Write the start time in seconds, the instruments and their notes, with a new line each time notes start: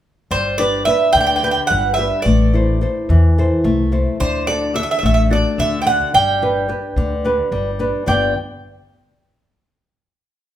0.31 upright bass G1, nylon-string guitar G3, bouzouki C5
0.58 nylon-string guitar D4 G4 B4, bouzouki D5
0.85 nylon-string guitar D4 G4 B4, bouzouki E5
1.13 upright bass D2, nylon-string guitar D3, bouzouki G5
1.21 bouzouki G5
1.27 bouzouki G5
1.36 bouzouki G5
1.43 nylon-string guitar D4 G4 B4, bouzouki G5
1.51 bouzouki G5
1.67 upright bass G1, bouzouki F#5
1.71 nylon-string guitar G3
1.94 bouzouki E5
1.98 nylon-string guitar D4 G4 B4
2.22 upright bass A1, nylon-string guitar A3, bouzouki D5
2.54 nylon-string guitar E4 A4 C5
2.81 nylon-string guitar E4 A4 C5
3.09 upright bass E2, nylon-string guitar E3
3.38 nylon-string guitar E4 A4 C5
3.64 upright bass C2, nylon-string guitar A3
3.92 nylon-string guitar E4 A4 C5
4.20 upright bass D2, nylon-string guitar D3, bouzouki C5
4.47 nylon-string guitar D4 F#4 A4, bouzouki D5
4.74 nylon-string guitar D4 F#4 A4, bouzouki E5
4.83 bouzouki E5
4.91 bouzouki E5
4.99 bouzouki E5
5.03 upright bass A1, nylon-string guitar A3, bouzouki E5
5.14 bouzouki E5
5.30 nylon-string guitar D4 F#4 A4, bouzouki D5
5.58 upright bass D2, nylon-string guitar D3, bouzouki E5
5.82 bouzouki G5
5.86 nylon-string guitar D4 F#4 A4, bouzouki F#5
6.14 upright bass G1, nylon-string guitar G3, bouzouki G5
6.42 nylon-string guitar D4 G4 B4
6.68 nylon-string guitar D4 G4 B4
6.96 upright bass D2, nylon-string guitar D3
7.24 nylon-string guitar D4 G4 B4
7.52 upright bass G1, nylon-string guitar G3
7.79 nylon-string guitar D4 G4 B4
8.06 upright bass G1, nylon-string guitar G2 D3 B3 D4 G4 D5, bouzouki G5